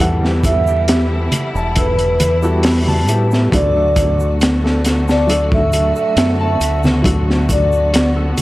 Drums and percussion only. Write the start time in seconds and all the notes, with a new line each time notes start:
0.25 snare
0.43 kick, closed hi-hat, shaker
0.67 shaker
0.88 snare, closed hi-hat, shaker
1.32 closed hi-hat, low conga, shaker
1.56 shaker
1.75 kick, closed hi-hat, shaker
1.99 closed hi-hat
2.20 closed hi-hat, low conga, shaker
2.43 shaker
2.63 snare, open hi-hat, shaker
2.88 low conga
3.08 closed hi-hat, shaker
3.31 snare, shaker
3.52 kick, closed hi-hat, shaker
3.96 kick, closed hi-hat, shaker
4.20 shaker
4.40 snare, closed hi-hat, shaker
4.66 snare
4.85 snare, closed hi-hat, shaker
5.08 snare, shaker
5.29 closed hi-hat, shaker
5.52 kick
5.72 closed hi-hat, shaker
5.96 shaker
6.17 snare, closed hi-hat, shaker
6.61 closed hi-hat, shaker
6.83 snare, low conga, shaker
7.04 kick, closed hi-hat, shaker
7.30 snare
7.49 kick, closed hi-hat, shaker
7.72 shaker
7.94 snare, closed hi-hat, shaker
8.38 closed hi-hat, low conga, shaker